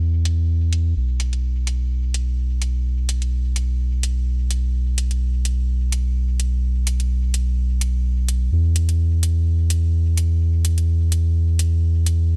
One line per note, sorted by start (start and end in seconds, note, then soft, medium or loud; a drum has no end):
0.00 0.94 E2 medium
0.25 closed hi-hat medium
0.73 closed hi-hat medium
0.96 8.50 B1 medium
1.20 closed hi-hat medium
1.33 closed hi-hat soft
1.67 closed hi-hat medium
2.14 closed hi-hat medium
2.62 closed hi-hat medium
3.09 closed hi-hat medium
3.22 closed hi-hat soft
3.56 closed hi-hat medium
4.03 closed hi-hat medium
4.51 closed hi-hat medium
4.98 closed hi-hat medium
5.11 closed hi-hat soft
5.45 closed hi-hat medium
5.92 closed hi-hat medium
6.40 closed hi-hat medium
6.87 closed hi-hat medium
7.00 closed hi-hat soft
7.34 closed hi-hat medium
7.81 closed hi-hat medium
8.29 closed hi-hat medium
8.52 12.36 E2 medium
8.76 closed hi-hat medium
8.89 closed hi-hat soft
9.23 closed hi-hat medium
9.70 closed hi-hat medium
10.17 closed hi-hat medium
10.65 closed hi-hat medium
10.78 closed hi-hat soft
11.12 closed hi-hat medium
11.59 closed hi-hat medium
12.06 closed hi-hat medium